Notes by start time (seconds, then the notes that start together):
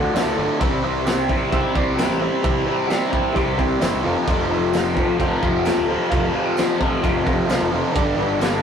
Already playing: D2 A2 D3 F4 A4 D5 G5
0.13 A1 D2 A2 D3 F4 A4 D5 E5, snare, tambourine, crash
0.25 D2
0.36 G1 D2 A2 D3 F4 A4 D5 F5
0.59 C2 C3 G3 C4 E4 G4 C5 E5, kick, crash
0.83 C3 G3 C4 E4 G4 C5 E5
1.06 C3 G3 C4 E4 G4 C5 E5, snare, tambourine, crash
1.28 C3 G3 C4 E4 G4 C5 E5, kick
1.50 C2 C3 G3 C4 E4 G4 C5 E5, kick, crash
1.74 C2 C3 G3 C4 E4 G4 C5 D5, kick
1.96 C3 G3 C4 E4 G4 C5 E5, snare, tambourine, crash
2.08 A1
2.20 C3 G3 C4 E4 G4 C5 E5
2.42 C2 C3 G3 C4 E4 G4 C5 E5, kick, crash
2.66 C3 G3 C4 E4 G4 C5 G5
2.87 C3 G3 C4 E4 G4 C5 E5, tambourine, crash
2.91 snare
3.10 C3 G3 C4 E4 G4 C5 E5, kick
3.33 C2 C3 G3 C4 E4 G4 C5 E5, kick, crash
3.57 C3 G3 C4 E4 G4 C5 E5, kick
3.79 G1 C3 G3 C4 E4 G4 C5 G5, snare, tambourine, crash
3.94 C2 B3
4.01 F2 C3 F3 C4 D4
4.05 F1 E4 F4 A4 C5 F5
4.12 G4 A4
4.17 B4 C5
4.23 F2 C3 D5 E5
4.27 F1 F3 C4 F4 A4 C5, kick, crash
4.48 F2 C3 F3 F4 C5 E5
4.53 A4
4.71 F2 C3 F3 F4 A4 C5, snare, tambourine, crash
4.75 F5
4.94 F2 C3 F3 F4 A4 C5 F5, kick
5.17 F1 F2 C3 F3 F4 A4 C5 G5, kick, crash
5.41 F1 F2 C3 F3 F4 A4 C5 F5, kick
5.64 F2 C3 F3 F4 A4 C5 F5, snare, tambourine, crash
5.78 D1
5.87 F2 C3 F3 F4 A4 C5 G5
6.09 F1 F2 C3 F3 F4 A4 C5 F5, kick, crash
6.33 F2 C3 F3 F4 A4 C5 F5
6.55 F2 C3 F3 F4 A4 C5 F5, snare, tambourine, crash
6.79 F2 C3 F3 F4 A4 C5 F5, kick
7.02 F1 F2 C3 F3 F4 A4 C5 F5, kick, crash
7.24 F2 C3 F3 F4 A4 C5 F5, kick
7.39 G5
7.47 C2 F2 C3 F3 F4 A5, tambourine, crash
7.51 A4 C5 F5, snare
7.60 F1
7.70 F1 F2 C3 F3 F4 A4 C5 E5
7.93 G1 G2 D3 G3 D4 G4 B4 D5, kick, crash
8.17 G2 D3 G3 D4 G4 B4 D5
8.40 G2 D3 G3 D4 G4 B4 F5, snare, tambourine, crash